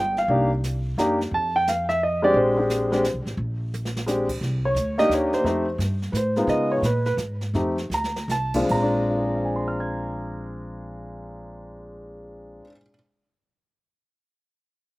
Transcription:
Already playing: G1 G5
0.17 F5, snare
0.28 C2 A#3 D4 D#4 G4, brush sweep
0.63 snare, hi-hat pedal
0.97 F#2 A#3 D4 D#4 G4, snare, hi-hat pedal
1.21 snare
1.31 F2 A5, brush sweep
1.56 G5
1.67 F5, snare, hi-hat pedal
1.89 E5, snare
2.03 D#5
2.22 G#3 C4 D4 G4 D5
2.34 A#1 C5, brush sweep
2.57 G#3 C4 D4 G4
2.69 snare, hi-hat pedal
2.92 G#3 C4 D4 G4, snare
3.04 snare, hi-hat pedal
3.14 C2
3.25 A1, snare
3.37 A#1, brush sweep
3.74 hi-hat pedal, high tom
3.85 snare
3.97 snare
4.06 G#3 C4 D4 G4, snare, hi-hat pedal
4.29 kick, crash
4.41 C2, brush sweep, snare
4.65 C#5
4.75 D2, snare, hi-hat pedal
4.98 A#3 D4 D#4 G4 D#5, snare
5.09 D#2, snare, hi-hat pedal
5.14 C#5
5.33 C5, snare
5.44 F2 A3 C4 D#4 G4 C5, brush sweep, snare
5.78 G2, snare, hi-hat pedal
6.02 snare
6.12 A2 B4, snare, hi-hat pedal
6.17 C5
6.36 G#3 B3 D#4 F4, snare
6.47 C#3 D#5, brush sweep, snare
6.72 C#5
6.82 A#2 B4, snare, hi-hat pedal
7.05 B4, snare
7.17 G#2, snare, hi-hat pedal
7.41 snare
7.54 F2 A3 C4 D#4 G4, brush sweep, snare
7.78 snare
7.90 D2, snare, hi-hat pedal
7.94 A#5
8.04 snare
8.16 snare
8.28 C2 A5, snare, hi-hat pedal
8.54 A#2 G#3 C4 D4 F4, kick, crash
8.66 A#1 G#3, kick, crash
8.71 C4 A#5
8.82 D4
9.10 F4
9.18 G#4
9.26 C5
9.35 F5
9.45 G#5
9.56 C6
9.68 F6
9.80 G#6

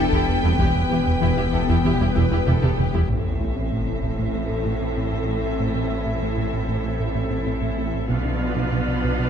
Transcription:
Already playing: E1 E3 B3 D4 G4 A4 B4 G5
0.12 E2 E3 E4 G4, taiko
0.29 E2
0.43 E2 G3 C4 E4 G4
0.58 E1 E2 E3 B3 E4 G4, taiko
0.76 E2
0.90 E1 E2 E3 B3 E4 G4
1.06 E2, taiko low
1.21 E1 E2 E3 E4 G4 B4
1.37 E2 E4 G4, taiko low
1.53 E1 E2 E4 G4 A4, taiko low
1.68 E2 E3 E4 G4, taiko
1.84 E1 E2 E3 B3 E4 G4, taiko low
2.00 E2 G3 E4 G4
2.15 E1 E2 E3 E4 G4 B4, taiko
2.31 E2 E4 G4
2.46 E1 E2 E4 G4 A4, taiko mid
2.62 E2 E3 E4 G4, taiko mid
2.78 E2 G4, taiko mid
2.93 E2 G3 E4 G4, taiko low
3.07 A1 A2 E3 A3 C4 E4 A4 C5 E5, taiko, sub drop
3.25 A2 C4
3.40 A3 E4
3.56 A2 C4
3.71 A2 A3
3.87 A2 C4
4.03 A2, taiko
4.18 A2 A3
4.35 A3
4.50 A2 A4
4.65 A2 A3
4.81 A2 C4
4.97 A2 C4
5.13 A2 A3
5.28 A3 E4
5.43 A2 C4
5.60 A2 A3
5.75 A2 C4
5.91 A3 E4
6.06 A2 C4
6.22 A2 A3
6.37 A2 C4
6.53 A2
6.68 A2 A3
6.84 A3
7.00 A2 A4
7.15 A2 A3
7.30 A2 C4
7.46 A2 C4
7.62 A2 A3
7.77 A3 E4
7.93 A2 C4
8.09 B1 B2 F3 B3 D4 F4 B4 D5 F5, taiko
8.25 B2 D4
8.40 B3 F4
8.56 B2 D4
8.72 B2 B3
8.87 B2 D4
9.04 B2, taiko
9.18 B2 B3

